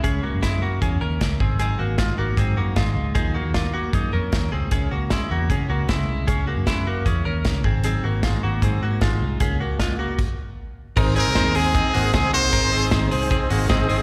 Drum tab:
CC |--------|--------|--------|--------|
RD |--------|--------|--------|--------|
HH |x-x-x-x-|x-x-x-x-|x-x-x-x-|x-x-x-x-|
SD |--o---o-|--o---o-|--o---o-|--o---o-|
BD |o-o-o-oo|--o-o-o-|o-o-o-o-|o-o-o-o-|

CC |--------|--------|----x---|x-------|
RD |--------|--------|--------|--x-x-x-|
HH |x-x-x-x-|x-x-x-x-|x-x-----|-opopopo|
SD |--o---o-|--o---o-|--o-----|--o---o-|
BD |o-o-o-oo|--o-o-o-|o-o-o---|o-o-o-o-|

CC |--------|
RD |x-x-x-x-|
HH |popopopo|
SD |--o---o-|
BD |o-o-o-o-|